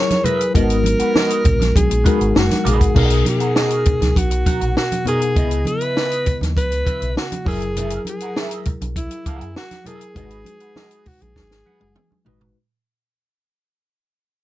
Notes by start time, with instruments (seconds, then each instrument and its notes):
Already playing: tine electric piano F#3 E4 G#4 A#4, alto saxophone C#5
0.09 muted clean electric guitar stroke, snare, closed hi-hat, high conga
0.24 clean electric guitar G#4 A#4 E5, alto saxophone B4, closed hi-hat, muted conga, low conga
0.39 muted clean electric guitar stroke, closed hi-hat
0.54 fingered electric bass G#1, tine electric piano G#3 B3 D#4 F#4, clean electric guitar F#4 B4 D#5, alto saxophone A#4, kick, closed hi-hat
0.70 closed hi-hat
0.84 muted clean electric guitar stroke, closed hi-hat, muted conga, high conga
1.00 clean electric guitar F#4 B4 F#5, muted fingered electric bass stroke, closed hi-hat
1.14 clean electric guitar F#4 B4 D#5, snare, muted conga, high conga
1.30 closed hi-hat
1.45 fingered electric bass A#1, muted clean electric guitar stroke, kick, closed hi-hat, muted conga, low conga
1.60 muted clean electric guitar stroke, snare, closed hi-hat, high conga
1.76 fingered electric bass B1, alto saxophone G#4, kick, closed hi-hat, muted conga, high conga
1.90 fingered electric bass A#1, muted clean electric guitar stroke, closed hi-hat
2.04 tine electric piano G#3 D#4 F#4 A#4, clean electric guitar F#4 B4 F#5, kick, closed hi-hat, high conga
2.20 fingered electric bass G#1, muted clean electric guitar stroke, closed hi-hat
2.34 fingered electric bass F#1, muted clean electric guitar stroke, snare, muted conga
2.39 alto saxophone F#4
2.49 muted clean electric guitar stroke, snare, closed hi-hat, high conga
2.64 fingered electric bass A#1, clean electric guitar F#4 B4 D#5, closed hi-hat, low conga
2.69 alto saxophone G#4
2.79 muted clean electric guitar stroke, kick, closed hi-hat
2.94 fingered electric bass B1, tine electric piano B2 B3 D#4 A#4, clean electric guitar F#4 A#4 D#5, kick, crash, low conga
3.10 closed hi-hat
3.25 alto saxophone G#4, muted clean electric guitar stroke, closed hi-hat, muted conga, high conga
3.40 clean electric guitar F#4 A#4 F#5, closed hi-hat
3.55 clean electric guitar F#4 A#4 D#5, snare, muted conga
3.70 closed hi-hat
3.86 muted clean electric guitar stroke, muted fingered electric bass stroke, kick, closed hi-hat, low conga
4.01 fingered electric bass C#2, muted clean electric guitar stroke, snare, closed hi-hat, high conga
4.16 fingered electric bass B1, alto saxophone F#4, kick, closed hi-hat, muted conga, high conga
4.31 muted clean electric guitar stroke, closed hi-hat
4.46 clean electric guitar F#4 A#4 F#5, kick, closed hi-hat, muted conga, high conga
4.61 fingered electric bass A#1, muted clean electric guitar stroke, closed hi-hat
4.76 alto saxophone F#4, muted clean electric guitar stroke, snare, muted conga
4.91 muted clean electric guitar stroke, closed hi-hat, high conga
5.05 tine electric piano B2 B3 D#4 A#4, clean electric guitar F#4 A#4 D#5, alto saxophone G#4, closed hi-hat, muted conga, low conga
5.22 muted clean electric guitar stroke, closed hi-hat
5.35 fingered electric bass C#2, tine electric piano C#3 B3 E4 D#5, clean electric guitar E4 B4 D#5, kick, closed hi-hat, muted conga, low conga
5.51 closed hi-hat
5.65 alto saxophone B4, muted clean electric guitar stroke, closed hi-hat, muted conga, high conga
5.81 clean electric guitar E4 B4 E5, closed hi-hat
5.96 clean electric guitar E4 B4 D#5, snare, muted conga
6.12 closed hi-hat
6.26 muted clean electric guitar stroke, muted fingered electric bass stroke, kick, closed hi-hat, low conga
6.41 fingered electric bass D#2, muted clean electric guitar stroke, snare, closed hi-hat, high conga
6.56 fingered electric bass C#2, alto saxophone B4, kick, closed hi-hat, high conga
6.71 muted clean electric guitar stroke, closed hi-hat
6.85 clean electric guitar E4 B4 E5, kick, closed hi-hat, high conga
7.01 fingered electric bass B1, muted clean electric guitar stroke, closed hi-hat
7.16 alto saxophone F#4, muted clean electric guitar stroke, snare, muted conga
7.31 muted clean electric guitar stroke, closed hi-hat, high conga
7.45 fingered electric bass F#1, tine electric piano F#3 E4 G#4 A#4, clean electric guitar G#4 A#4 E5, alto saxophone G#4, kick, open hi-hat, muted conga, low conga
7.62 muted clean electric guitar stroke, closed hi-hat
7.77 clean electric guitar G#4 A#4 E5, closed hi-hat, muted conga, low conga
7.90 closed hi-hat
8.05 alto saxophone G#4, muted clean electric guitar stroke, closed hi-hat, high conga
8.20 clean electric guitar G#4 A#4 F#5, closed hi-hat
8.36 clean electric guitar G#4 A#4 E5, snare
8.51 closed hi-hat
8.65 muted clean electric guitar stroke, muted fingered electric bass stroke, kick, closed hi-hat, muted conga, low conga
8.81 fingered electric bass B1, muted clean electric guitar stroke, closed hi-hat, high conga
8.96 alto saxophone E4, kick, closed hi-hat, high conga
9.11 muted clean electric guitar stroke, closed hi-hat
9.26 fingered electric bass C#2, clean electric guitar G#4 A#4 F#5, kick, closed hi-hat, high conga
9.41 fingered electric bass F#2, muted clean electric guitar stroke, closed hi-hat
9.56 alto saxophone F#4, muted clean electric guitar stroke, snare
9.71 muted clean electric guitar stroke, snare, closed hi-hat, high conga
9.84 tine electric piano F#3 E4 G#4 A#4, clean electric guitar G#4 A#4 E5, alto saxophone G#4, closed hi-hat, muted conga, low conga
10.01 muted clean electric guitar stroke, closed hi-hat
10.14 fingered electric bass G#1, tine electric piano G#3 D#4 F#4 B4, clean electric guitar F#4 B4 D#5, alto saxophone G#4, kick, closed hi-hat, low conga
10.30 closed hi-hat
10.45 muted clean electric guitar stroke, closed hi-hat, muted conga, high conga
10.60 clean electric guitar F#4 B4 F#5, closed hi-hat
10.75 clean electric guitar F#4 B4 D#5, snare, muted conga, high conga
10.91 closed hi-hat
11.06 alto saxophone F#4, muted clean electric guitar stroke, kick, open hi-hat, muted conga, low conga
11.21 fingered electric bass A#1, alto saxophone G#4, muted clean electric guitar stroke, closed hi-hat, high conga
11.36 fingered electric bass G#1, kick, snare, high conga
11.51 muted clean electric guitar stroke, snare
11.65 clean electric guitar F#4 B4 F#5, muted conga, high conga
11.80 fingered electric bass F#1, muted clean electric guitar stroke, high tom
11.95 muted clean electric guitar stroke, mid tom, muted conga
12.11 muted clean electric guitar stroke, high conga
12.25 fingered electric bass G#1, tine electric piano G#3 D#4 F#4 B4, clean electric guitar F#4 B4 D#5, floor tom, low conga
12.41 floor tom